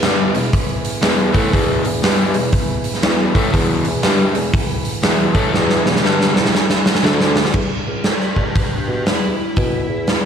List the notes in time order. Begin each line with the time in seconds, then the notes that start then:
Already playing: B3 E4 G#4 B4
0.02 G2 D3 G3, snare, open hi-hat
0.34 E2 B2, open hi-hat
0.53 kick, open hi-hat
0.85 open hi-hat
1.02 E2 B2 E3, snare, open hi-hat
1.32 A2 E3 A3, kick, open hi-hat
1.52 E2 B2 E3, kick, open hi-hat
1.85 E2 B2, open hi-hat
2.02 G2 D3 G3, snare, open hi-hat
2.34 E2 B2, open hi-hat
2.52 kick, open hi-hat
2.84 open hi-hat
2.94 snare
3.03 E2 B2 E3, snare, open hi-hat
3.35 A2 E3 A3, kick, open hi-hat
3.53 E2 B2 E3 F4 A4 C5, kick, open hi-hat
3.70 E4 G#4 B4
3.85 E2 B2, open hi-hat
4.02 G2 D3 G3, snare, open hi-hat
4.34 E2 B2, open hi-hat
4.54 kick, open hi-hat
4.85 open hi-hat
5.02 E2 B2 E3, snare, open hi-hat
5.34 A2 E3 A3, kick, open hi-hat
5.53 E2 B2 E3, snare
5.70 snare
5.85 E2 B2, snare
5.96 snare
6.03 G2 D3 G3, snare
6.21 snare
6.34 E2 B2, snare
6.45 snare
6.55 snare
6.70 snare
6.86 snare
6.95 snare
7.02 D2 D3 A3 D4 A4 D5, snare
7.21 snare
7.36 snare
7.45 snare
7.54 E2, kick, crash
7.86 C#2
8.04 B4 D5, snare, open hi-hat
8.21 B4 D5, snare
8.36 G4, kick
8.41 B4
8.55 G4, kick, open hi-hat
8.60 B4
8.75 D4 G4
8.88 B2
8.92 D4 G4
9.06 E2 E4, snare, open hi-hat
9.56 B2, kick, open hi-hat
9.89 E2
10.07 snare, open hi-hat